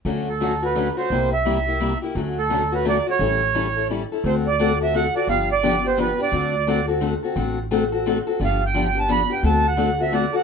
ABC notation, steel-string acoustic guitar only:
X:1
M:3/4
L:1/16
Q:"Swing" 1/4=173
K:D
V:1 name="Steel-string acoustic guitar"
[D,F,A,CF]2 z2 [D,F,A,CF] z [A,CF]2 [D,F,A,CF] z [A,CF]2 | [=C,G,_B,EG]2 z2 [C,G,B,EG] z [B,EG]2 [C,G,B,EG] z [B,EG]2 | [D,F,A,CF]2 z2 [D,F,A,CF] z [A,CF]2 [D,F,A,CF] z [A,CF]2 | [E,G,CEA]2 z2 [E,G,CEA] z [CEA]2 [E,G,CEA] z [CEA]2 |
[K:Dmix] [D,A,CFA]2 z2 [D,A,CFA] z [CFA]2 [D,A,CFA] z [CFA]2 | [D,=F,B,DG]2 z2 [D,F,B,DG] z [B,DG]2 [D,F,B,DG] z [B,DG]2 | [D,A,CFA]2 z2 [D,A,CFA] z [CFA]2 [D,A,CFA] z [CFA]2 | [D,A,CFA]2 z2 [D,A,CFA] z [CFA]2 [D,A,CFA] z [CFA]2 |
[D,=F,B,DG]2 z2 [D,F,B,DG] z [B,DG]2 [D,F,B,DG] z [B,DG]2 | [D,A,CFA]2 z2 [D,A,CFA] z [CFA]2 [D,A,CFA] z [CFA]2 |]